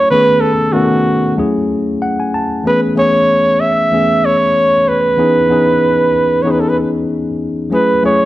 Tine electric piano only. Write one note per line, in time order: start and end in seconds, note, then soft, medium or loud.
0.00 0.12 F#3 medium
0.00 0.11 A3 medium
0.00 0.12 C#4 medium
0.00 0.12 E4 medium
0.00 0.13 F#4 medium
0.11 0.53 D#3 medium
0.11 0.53 A3 medium
0.11 0.54 B3 medium
0.11 0.54 C#4 medium
0.11 0.55 G#4 medium
0.73 1.37 D#3 medium
0.73 1.36 A3 medium
0.73 1.38 B3 medium
0.73 1.37 C#4 medium
0.73 1.38 A4 medium
1.37 2.39 F#3 medium
1.37 2.39 A3 medium
1.37 2.40 C#4 medium
1.37 2.40 E4 medium
1.37 2.41 G#4 medium
2.02 2.18 F#5 medium
2.20 2.33 G#5 medium
2.34 2.63 A5 medium
2.64 2.86 E3 medium
2.64 2.86 A3 medium
2.64 2.87 B3 medium
2.64 2.87 C#4 medium
2.64 2.87 G#4 medium
2.95 3.58 E3 medium
2.95 3.58 A3 medium
2.95 3.59 B3 medium
2.95 3.59 C#4 medium
2.95 3.59 G#4 medium
3.91 4.75 E3 medium
3.91 4.76 A3 medium
3.91 4.76 B3 medium
3.91 4.76 C#4 medium
3.91 4.77 G#4 medium
5.17 5.39 E3 medium
5.17 5.40 B3 medium
5.17 5.40 C#4 medium
5.17 5.40 D#4 medium
5.17 5.40 G#4 medium
5.49 6.12 E3 medium
5.49 6.12 B3 medium
5.49 6.12 C#4 medium
5.49 6.13 D#4 medium
5.49 6.13 G#4 medium
6.44 7.28 E3 medium
6.44 7.29 B3 medium
6.44 7.29 C#4 medium
6.44 7.29 D#4 medium
6.44 7.30 G#4 medium
7.70 7.92 F#3 medium
7.70 7.93 A3 medium
7.70 7.93 C#4 medium
7.70 7.94 E4 medium
7.70 7.94 G#4 medium
8.03 8.25 F#3 medium
8.03 8.25 A3 medium
8.03 8.25 C#4 medium
8.03 8.25 E4 medium
8.03 8.25 G#4 medium